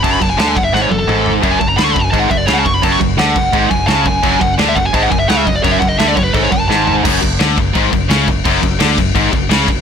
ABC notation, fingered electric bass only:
X:1
M:4/4
L:1/8
Q:1/4=171
K:F#m
V:1 name="Fingered electric bass" clef=bass
F,,, F,,, D,, F,,, G,,, F,,, G,,,2 | F,,, F,,, D,, F,,, G,,, F,,, C,, F,,, | F,,, F,,, D,, F,,, G,,, F,,, C,, F,,, | F,,, F,,, D,, F,,, G,,, F,,, C,, F,,, |
F,,, F,,, D,, F,,, G,,, F,,, G,,,2 | F,,, F,,, D,, F,,, G,,, F,,, C,, F,,, | F,,, F,,, D,, F,,, G,,, F,,, C,, F,,, |]